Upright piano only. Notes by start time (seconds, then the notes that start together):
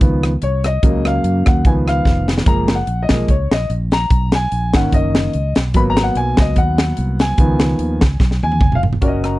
0.01 D#3 F3 B3
0.43 C#5
0.66 D#5
0.82 C#3 F#3 A#3
1.07 F5
1.47 F#5
1.65 D#3 F3 B3 G#5
1.88 F5
2.46 F3 G#3 A#3 A#5
2.75 F#5
3.03 D#5
3.10 F3 G#3 A#3
3.30 C#5
3.52 D#5
3.93 A#5
4.35 G#5
4.73 D#3 A#3 C#4 F#5
4.94 D#5
5.75 F#3 A#3 B3 B5
5.90 A#5
6.03 F#5
6.17 G#5
6.40 D#5
6.58 F#5
7.21 G#5
7.38 D#3 F3 B3
8.43 G#5
8.75 F5
9.01 C#4 F#4 A#4 D5
9.07 D#5
9.25 A#5